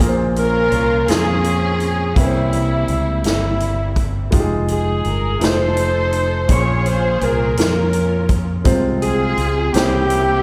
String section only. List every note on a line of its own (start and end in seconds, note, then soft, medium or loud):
0.37 1.07 C#4 medium
0.37 1.41 F4 medium
0.37 1.06 A#4 loud
1.09 2.13 C4 medium
1.09 2.13 C#4 medium
1.09 2.17 G#4 medium
2.17 3.21 G3 medium
2.17 3.21 A#3 medium
2.17 3.25 E4 medium
3.26 4.30 G3 soft
3.26 4.30 A#3 soft
3.26 4.03 E4 medium
4.70 5.03 G#4 medium
5.07 5.42 A#4 medium
5.43 6.47 D#4 medium
5.43 6.46 A4 medium
5.43 6.47 C5 medium
6.50 7.54 F4 medium
6.50 7.54 G#4 medium
6.50 6.87 C#5 medium
6.88 7.23 C5 medium
7.23 7.58 A#4 medium
7.60 8.63 C#4 medium
7.60 8.63 F4 medium
7.60 8.36 A#4 medium
9.03 9.71 C4 medium
9.03 9.71 F4 medium
9.03 9.71 G#4 medium
9.75 10.43 A#3 medium
9.75 10.43 E4 medium
9.75 10.43 G4 medium